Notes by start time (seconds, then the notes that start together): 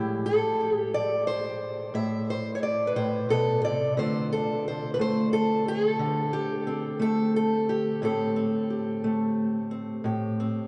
Already playing: A2 E4 G4
0.26 A4
0.60 G4
0.77 G4
0.94 D5
1.27 C5
1.94 A2 E5
2.30 C5
2.55 C#5
2.63 D5
2.87 B4
2.96 A2 C5
3.29 B2 A4
3.65 C3 D5
3.97 D3 A3 C4 F4 C5
4.33 A4
4.68 C5
4.94 B4
4.99 A3 C5
5.33 A4
5.68 G#4
5.88 A4
5.99 D3
6.33 G4
6.67 C4
6.99 A3 A4
7.36 A4
7.69 G4
8.02 A2 A3 C4 G4 A4
8.36 C4
8.70 G4
9.04 A3
9.71 C4
10.04 A2 G4
10.40 C4